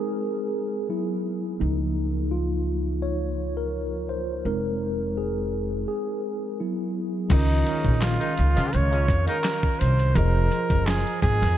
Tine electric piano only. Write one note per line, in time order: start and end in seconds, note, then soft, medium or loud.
0.00 0.89 G#3 soft
0.00 0.89 C4 soft
0.00 0.89 D#4 soft
0.00 0.91 G#4 medium
0.00 0.89 A#4 medium
0.89 1.56 F#3 soft
0.89 1.56 B3 soft
0.89 1.57 E4 medium
1.60 2.07 F3 soft
1.60 2.08 A#3 soft
1.60 2.08 D#4 medium
2.31 3.04 F4 medium
3.02 3.58 C#5 medium
3.57 4.11 A#4 medium
4.09 4.25 C5 medium
4.46 4.93 G#3 soft
4.46 4.94 C4 soft
4.46 4.94 D#4 soft
4.46 5.19 A#4 medium
5.18 5.84 G#4 medium
5.88 6.61 G#4 medium
6.60 7.27 F#3 soft
6.60 7.28 B3 soft
6.60 7.28 E4 medium
7.30 10.12 D#3 medium
7.30 10.12 C#4 medium
7.30 10.13 F4 medium
7.30 10.13 A#4 medium
7.34 10.14 D#5 medium
10.15 11.58 F3 medium
10.15 11.58 F4 medium
10.15 11.58 G#4 medium
10.15 11.58 C5 medium
10.19 11.58 D#5 medium